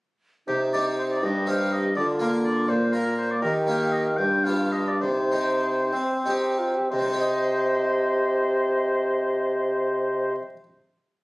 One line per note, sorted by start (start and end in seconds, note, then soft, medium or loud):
0.47 1.18 C3 soft
0.47 1.19 C3 soft
0.47 1.24 D#4 medium
0.47 0.59 G4 medium
0.73 1.27 C4 soft
0.73 1.27 D#4 soft
0.73 1.27 G4 soft
0.73 0.84 D5 medium
0.98 1.04 C5 medium
1.11 1.25 D5 medium
1.22 1.94 G2 soft
1.22 1.92 G2 soft
1.22 1.96 G4 medium
1.22 1.49 D#5 medium
1.46 1.82 C4 soft
1.46 1.82 D#4 soft
1.46 1.82 G4 soft
1.46 1.74 F5 medium
1.72 1.96 D#5 medium
1.95 2.64 D3 soft
1.95 2.70 D3 medium
1.95 3.40 F4 medium
1.95 2.07 D5 medium
2.19 2.72 A#3 soft
2.19 2.72 F4 soft
2.19 2.73 A#4 soft
2.19 2.31 F5 medium
2.45 2.70 D5 medium
2.68 3.38 A#2 soft
2.68 3.41 A#2 medium
2.68 2.95 C5 medium
2.93 3.29 A#3 soft
2.93 3.29 F4 soft
2.93 3.17 A#4 medium
2.93 3.29 A#4 soft
3.18 3.32 C5 medium
3.31 3.41 D5 medium
3.42 4.17 D#3 medium
3.42 4.15 D#3 soft
3.42 4.21 G4 medium
3.42 3.53 A#4 medium
3.67 4.04 A#3 soft
3.67 4.05 D#4 soft
3.67 4.05 G4 soft
3.67 3.93 F5 medium
3.92 4.05 D#5 medium
4.06 4.19 F5 medium
4.17 4.99 G2 soft
4.17 5.01 G2 medium
4.17 5.01 D4 medium
4.17 4.46 G5 medium
4.44 4.87 B3 soft
4.44 4.87 F4 soft
4.44 4.87 G4 soft
4.44 4.74 F5 medium
4.72 4.89 D#5 medium
4.88 5.01 D5 medium
5.01 5.89 C3 soft
5.01 5.92 C3 medium
5.01 5.86 D#4 medium
5.01 6.54 C5 medium
5.32 5.91 C4 soft
5.32 5.99 D#4 soft
5.32 5.99 G4 soft
5.92 6.22 C4 medium
5.92 6.25 C4 medium
5.92 6.89 C4 medium
6.25 6.73 C4 soft
6.25 6.73 D#4 soft
6.25 6.60 G4 medium
6.25 6.74 G4 soft
6.59 6.76 F4 medium
6.75 6.91 G4 medium
6.91 10.34 C3 medium
6.91 10.35 C3 medium
6.91 10.34 C5 medium
6.91 10.35 D#5 medium
6.99 10.42 C4 medium
7.06 10.49 D#4 medium
7.13 10.56 G4 medium
7.20 10.63 D#5 medium